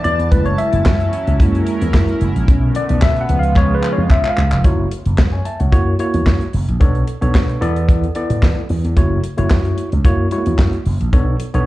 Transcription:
Already playing: D3 E3 B3 A5
0.04 E2 D5, closed hi-hat
0.19 E2, closed hi-hat
0.32 F#1 F#3 G#3 A3 C#4 E4 B4, kick, closed hi-hat
0.46 C#5, closed hi-hat
0.58 E5, closed hi-hat
0.73 F#1, closed hi-hat
0.86 F#2, kick, snare, clap
1.00 closed hi-hat
1.13 closed hi-hat
1.27 C#2, closed hi-hat
1.40 F#2 G#3 A#3 E4 A#4, kick, closed hi-hat
1.55 closed hi-hat
1.67 closed hi-hat
1.81 E2, closed hi-hat
1.94 F#2, kick, snare, clap
2.08 closed hi-hat
2.21 F#1, closed hi-hat
2.36 A#1, closed hi-hat
2.48 B1 D3 A3 B3 C#4, kick, closed hi-hat
2.75 D5, closed hi-hat
2.89 B1, closed hi-hat
3.02 B2 E5, kick, snare, clap
3.16 closed hi-hat
3.21 F#5
3.29 C#2 C#3 F3 G#3 B3 F4, closed hi-hat
3.39 F5
3.43 closed hi-hat
3.56 C#5, kick, clap
3.75 B4
3.83 clap
3.93 C#5
3.98 F2
4.10 C#3 E5, kick, clap
4.25 clap
4.29 F5
4.38 C#2, clap
4.52 F1, clap
4.64 F#1 A3 E4 F#4 C#5, kick, closed hi-hat
4.91 closed hi-hat
5.06 F#1, closed hi-hat
5.18 F#2, kick, snare, clap
5.33 C#5 G#5
5.45 E5 A5, closed hi-hat
5.60 C#2 C#5 F#5, closed hi-hat
5.72 F#2 A#3 E4 F#4 C#5, kick, closed hi-hat
5.99 A#3 E4 F#4 C#5, closed hi-hat
6.14 E2, closed hi-hat
6.26 F#2, kick, snare, clap
6.41 closed hi-hat
6.53 F#1, open hi-hat
6.68 A#1, closed hi-hat
6.80 B1 B3 D4 A4 C#5, kick, closed hi-hat
6.95 closed hi-hat
7.08 closed hi-hat
7.21 B1 B3 D4 A4 C#5, closed hi-hat
7.35 B2, kick, snare, clap
7.49 closed hi-hat
7.61 E2 B3 E4 A4 D5, closed hi-hat
7.76 closed hi-hat
7.89 kick, closed hi-hat
8.04 closed hi-hat
8.15 B3 E4 A4 D5, closed hi-hat
8.30 A2, closed hi-hat
8.42 E3, kick, snare, clap
8.69 E2, open hi-hat
8.84 E2, closed hi-hat
8.96 F#1 A3 E4 F#4 C#5, kick, closed hi-hat
9.24 closed hi-hat
9.37 F#1 A3 E4 F#4 C#5, closed hi-hat
9.50 F#2, kick, snare, clap
9.65 closed hi-hat
9.78 closed hi-hat
9.92 C#2, closed hi-hat
10.05 F#2 A#3 E4 F#4 C#5, kick, closed hi-hat
10.31 G#3 E4 F#4 C#5, closed hi-hat
10.38 A#3
10.46 E2, closed hi-hat
10.59 F#2, kick, snare, clap
10.73 closed hi-hat
10.86 F#1, open hi-hat
11.00 A#1, closed hi-hat
11.13 B1 B3 D4 A4 C#5, kick, closed hi-hat
11.40 closed hi-hat
11.54 B1 B3 D4 A4 C#5, closed hi-hat

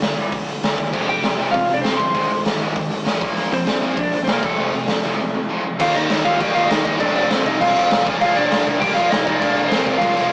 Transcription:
0.02 G1 G2 D3, snare, open hi-hat
0.17 G1 G2 D3 G3, open hi-hat
0.32 G1 G2 D3, kick, open hi-hat
0.48 G1 G2 D3, open hi-hat
0.63 D2 G2 D3 G3, snare, open hi-hat
0.78 D#2 G2 D3, kick, open hi-hat
0.93 F1 F2 C3 F3, kick, crash
1.08 F1 F2 C3 G4 G5, open hi-hat
1.23 F1 F2 C3, snare, open hi-hat
1.38 F1 F2 C3 F3, open hi-hat
1.51 F1 F2 C3 F4 F5, kick, open hi-hat
1.69 F1 F2 C3, open hi-hat
1.74 D4 D5
1.81 C2 F2 C3 C4 C5, snare, open hi-hat
1.86 F3
1.97 G1 C5 C6, kick, open hi-hat
2.01 F2 C3
2.15 G#1 G#2 D#3 G#3, kick, open hi-hat
2.30 G#1 G#2 D#3, open hi-hat
2.45 G#1 G#2 D#3, snare, open hi-hat
2.60 G#1 G#2 D#3 G#3, open hi-hat
2.76 G#1 G#2 D#3, kick, open hi-hat
2.91 G#1 G#2 D#3, open hi-hat
3.06 A1 G#2 D#3 G#3, snare, open hi-hat
3.21 A#1 A#2 F3 A#3, kick, open hi-hat
3.36 A#1 A#2 F3 A#3, open hi-hat
3.52 A#1 A#2 F3 C4 C5, open hi-hat
3.67 A#1 A#2 F3, snare, open hi-hat
3.82 A#1 A#2 F3 A#3, open hi-hat
3.97 A#1 A#2 F3 D4 D5, kick, open hi-hat
4.12 A#1 A#2 F3, open hi-hat
4.23 C4 C5
4.27 F1 A#2 F3 A#3, snare, open hi-hat
4.32 A#4
4.42 F1 F2 C3 F3 A3 A4, kick, crash
4.57 F1 F2 C3 F3
4.73 F1 F2 C3, open hi-hat
4.88 F1 F2 C3, snare, open hi-hat
5.03 F1 F2 C3 F3, open hi-hat
5.20 F2 C3
5.35 F2 C3
5.50 F2 C3 F3
5.66 F2 C3
5.79 D#2 D#3 G3 A#3 D#4 F4 F5, kick, crash
5.95 D#2 D#4 D#5, crash
6.10 D#2, snare, crash
6.25 D#2 F4 F5, kick, crash
6.40 A#1 G4 G5, kick, crash
6.55 D#2 D#3 A#3 D#4 F4 F5, crash
6.69 D#2 D#3 A#3 D#4 D#5, snare, crash
6.74 D#4
6.85 D#4 D#5, kick, crash
7.00 F1 F2 C3 F3 A3 C4 D4 F4 D5, kick, crash
7.15 F1 D4 D5, crash
7.30 F1 C4 C5, snare, crash
7.46 F1 D#4 D#5, kick, crash
7.61 C2 F4 F5, kick, crash
7.76 F1 F2 C3 F3, crash
7.91 F1 F2 C3 F3, snare, crash
8.06 F1 A#2 F3 A#3 D4 F4, kick, crash
8.21 F1 F4 F5, crash
8.35 F1 D4 D5, crash
8.51 F1, snare, crash
8.67 F1, kick, crash
8.80 C2 A#2 F3 G4 G5, kick, crash
8.85 A#3
8.95 F1 F3 A#3 F4 F5, crash
9.00 A#2
9.11 F1 D#4 D#5, snare, crash
9.25 A#2 F3 D4 D#4 D#5, kick, crash
9.29 A#3 F4
9.40 F1 D4 D5, kick, crash
9.56 F1, crash
9.68 F1 C4 C5, snare, crash
9.86 F1, kick, crash
9.98 C2 A#2 F4 F5, kick, crash
10.03 F3 A#3
10.16 F1 A#2 F3 A#3, crash

